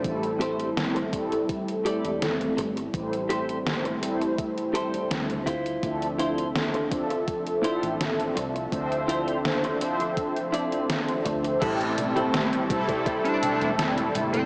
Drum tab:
CC |----------------|----------------|----------------|----------------|
HH |xxxxxxxxxxxxxxxx|xxxxxxxxxxxxxxxx|xxxxxxxxxxxxxxxx|xxxxxxxxxxxxxxxx|
SD |----o-------o---|----o-------o---|----o-------o---|----o-------o---|
CG |----------------|----------------|----------------|----------------|
BD |o-----o-o-------|o-------o-----o-|o-----o-o-------|o-------o-----o-|

CC |x---------------|
HH |xxxxxxxxxxxxxxxx|
SD |----o-------o---|
CG |o-ooo-ooo-ooo-oo|
BD |o-----ooo-------|